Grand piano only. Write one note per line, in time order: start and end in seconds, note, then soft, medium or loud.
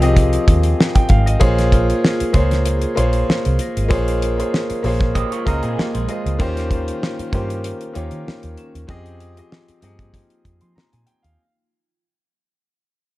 0.00 1.43 F3 loud
0.00 1.43 C4 loud
0.00 0.02 G4 loud
0.00 0.32 G4 medium
0.00 0.02 G#4 loud
0.00 0.32 G#4 medium
0.00 0.03 D#5 loud
0.00 0.32 D#5 medium
0.95 1.09 G5 medium
1.09 1.25 F5 medium
1.26 1.56 D#5 medium
1.40 2.00 A#3 loud
1.40 2.00 F4 loud
1.40 2.01 G#4 loud
1.40 2.01 C5 loud
1.40 2.01 C#5 loud
2.33 2.74 A#3 medium
2.33 2.75 F4 medium
2.33 2.74 G#4 medium
2.33 2.75 C5 medium
2.33 2.75 C#5 loud
2.95 3.56 A#3 medium
2.95 3.56 F4 medium
2.95 3.56 G#4 medium
2.95 3.57 C5 medium
2.95 3.57 C#5 loud
3.88 4.19 A#3 loud
3.88 4.20 F4 loud
3.88 4.20 G#4 loud
3.88 4.20 C5 loud
3.88 4.21 C#5 loud
4.38 4.68 A#3 medium
4.38 4.68 F4 medium
4.38 4.68 G#4 medium
4.38 4.69 C5 medium
4.38 4.69 C#5 medium
4.83 5.24 A#3 medium
4.83 5.24 F4 medium
4.83 5.24 G#4 medium
4.83 5.25 C5 medium
4.83 5.25 C#5 medium
5.45 5.86 A#3 medium
5.45 5.86 F4 medium
5.45 5.87 G#4 medium
5.45 5.87 C5 medium
5.45 5.87 D#5 loud
6.08 6.29 A#3 medium
6.08 6.29 F4 medium
6.08 6.29 G#4 medium
6.08 6.30 C5 medium
6.08 6.30 D#5 medium
6.39 6.99 D#3 loud
6.39 6.99 A#3 loud
6.39 7.00 C#4 loud
6.39 7.00 F4 loud
6.39 7.00 G4 loud
6.39 7.00 C5 loud
7.32 7.73 D#3 medium
7.32 7.73 A#3 medium
7.32 7.74 C#4 medium
7.32 7.74 F4 medium
7.32 7.74 G4 medium
7.32 7.74 C5 medium
7.93 8.54 D#3 medium
7.93 8.55 A#3 medium
7.93 8.55 C#4 medium
7.93 8.55 F4 medium
7.93 8.55 G4 medium
7.93 8.56 C#5 medium
8.87 9.18 F3 loud
8.87 9.19 C4 loud
8.87 9.19 G4 loud
8.87 9.19 G#4 loud
8.87 9.20 D#5 loud
9.36 9.66 F3 medium
9.36 9.67 C4 medium
9.36 9.67 G4 medium
9.36 9.67 G#4 medium
9.36 9.68 D#5 medium
9.81 10.22 F3 medium
9.81 10.23 C4 medium
9.81 10.23 G4 medium
9.81 10.24 G#4 medium
9.81 10.24 D#5 medium
10.61 10.75 C6 medium
10.76 10.92 A#5 medium
10.93 11.06 G#5 medium
11.06 11.23 G5 medium
11.22 11.53 F5 medium